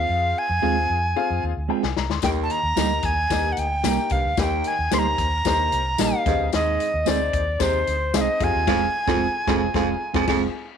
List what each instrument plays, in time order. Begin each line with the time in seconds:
Already playing: upright piano C4 F4 G#4 F5, recorder F5
0.09 fingered electric bass F2
0.38 recorder G#5
0.49 fingered electric bass F2
0.62 fingered electric bass D#2, clean electric guitar G#3 C4 F4 G#4, upright piano C4 F4 G#4 F5
0.90 fingered electric bass F2
1.16 upright piano C4 F4 G#4 F5
1.30 fingered electric bass F2
1.43 fingered electric bass D#2
1.57 fingered electric bass D2
1.68 clean electric guitar G#3 C4 F4 G#4, upright piano G5
1.83 fingered electric bass C2, upright piano G#5, snare
1.96 fingered electric bass C2, upright piano A#5, snare
2.10 fingered electric bass D2, upright piano C6, snare
2.22 fingered electric bass D#2, baritone saxophone D#2, upright piano D#3 A#3 D#4 G4 D#5, recorder G5, kick, snare, closed hi-hat, tambourine
2.43 recorder A5
2.50 recorder A#5, closed hi-hat
2.63 fingered electric bass D#2
2.76 fingered electric bass D2, clean electric guitar G3 A#3 D#4 G4, upright piano A#3 D#4 G4 D#5, snare, closed hi-hat, tambourine
3.02 fingered electric bass D#2, recorder G#5, kick, closed hi-hat
3.30 fingered electric bass D#2, baritone saxophone G2, upright piano A#3 D#4 G4 D#5, kick, snare, closed hi-hat, tambourine
3.52 recorder F#5
3.57 fingered electric bass D2, recorder G5, closed hi-hat
3.84 fingered electric bass C2, clean electric guitar G3 A#3 D#4 G4, upright piano A#3 D#4 G4 A#4, snare, closed hi-hat, tambourine
4.09 fingered electric bass C2, baritone saxophone G2, recorder F5, kick, closed hi-hat
4.24 fingered electric bass D2
4.37 baritone saxophone D#2, fingered electric bass D#2, upright piano D#3 A#3 D#4 G4 D#5, recorder G#5, kick, snare, closed hi-hat, tambourine
4.43 recorder G5
4.64 recorder G#5, closed hi-hat
4.79 fingered electric bass D#2
4.91 fingered electric bass D2, clean electric guitar G3 A#3 D#4 G4, upright piano A#3 D#4 G4 C5, recorder C6, snare, closed hi-hat, tambourine
4.99 recorder A#5
5.18 fingered electric bass D#2, kick, closed hi-hat
5.45 fingered electric bass D#2, baritone saxophone G2, upright piano A#3 D#4 G4 C5, kick, snare, closed hi-hat, tambourine
5.72 fingered electric bass C2, closed hi-hat
5.98 fingered electric bass A#1, clean electric guitar G3 A#3 D#4 G4, upright piano A#3 D#4 G4 D#5, recorder F5, snare, closed hi-hat, tambourine
6.26 fingered electric bass D#2, baritone saxophone G2, upright piano D#3 C4 D#4 G#4 D#5, kick, snare, closed hi-hat
6.39 fingered electric bass D2
6.52 fingered electric bass D#2, baritone saxophone G#2, recorder D#5, snare, closed hi-hat, tambourine
6.80 closed hi-hat
6.94 fingered electric bass D#2
7.05 fingered electric bass D2, clean electric guitar G#3 C4 D#4 G#4, upright piano C4 D#4 G#4 C5, recorder D5, snare, closed hi-hat, tambourine
7.33 fingered electric bass D#2, kick, closed hi-hat
7.59 fingered electric bass D#2, baritone saxophone C3, upright piano C4 D#4 G#4 C5, recorder C5, kick, snare, closed hi-hat, tambourine
7.87 fingered electric bass D2, closed hi-hat
8.14 fingered electric bass C2, clean electric guitar G#3 C4 D#4 G#4, upright piano C4 D#4 G#4 D#5, recorder F5, snare, closed hi-hat, tambourine
8.21 recorder D#5
8.40 fingered electric bass F2, baritone saxophone C3, upright piano C4 F4 G#4 F5, recorder G#5, kick, closed hi-hat
8.55 fingered electric bass D#2
8.67 fingered electric bass F1, baritone saxophone F2, clean electric guitar G#3 C4 F4 G#4, upright piano C4 F4 G#4 F5, kick, snare, crash
9.07 fingered electric bass F1, baritone saxophone F2, clean electric guitar G#3 C4 F4 G#4, upright piano C4 F4 G#4, kick, snare
9.47 fingered electric bass F1, baritone saxophone F2, clean electric guitar G#3 C4 F4 G#4, upright piano C4 F4 G#4, kick, snare
9.74 fingered electric bass F1, baritone saxophone F2, clean electric guitar G#3 C4 F4 G#4, upright piano C4 F4 G#4 F5, kick, snare
10.14 fingered electric bass F1, baritone saxophone F2, clean electric guitar G#3 C4 F4 G#4, upright piano C4 F4 G#4 G#5, kick, snare
10.27 fingered electric bass F1, baritone saxophone F2, clean electric guitar G#3 C4 F4 G#4, upright piano C4 F4 G#4 G#5, kick, snare, crash